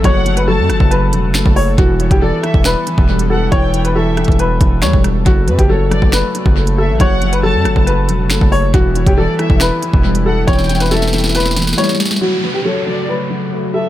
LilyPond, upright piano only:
\new Staff \with { instrumentName = "Upright piano" } { \time 4/4 \key fis \phrygian \tempo 4 = 138 cis''8. b'16 a'4 b'4. cis''8 | fis'8. g'16 a'4 b'4. a'8 | cis''8. b'16 a'4 b'4 cis''8 r8 | fis'8. g'16 a'4 b'4. a'8 |
cis''8. b'16 a'4 b'4. cis''8 | fis'8. g'16 a'4 b'4. a'8 | cis''8. b'16 a'4 b'4 cis''8 r8 | fis'8. g'16 a'4 b'4. a'8 | }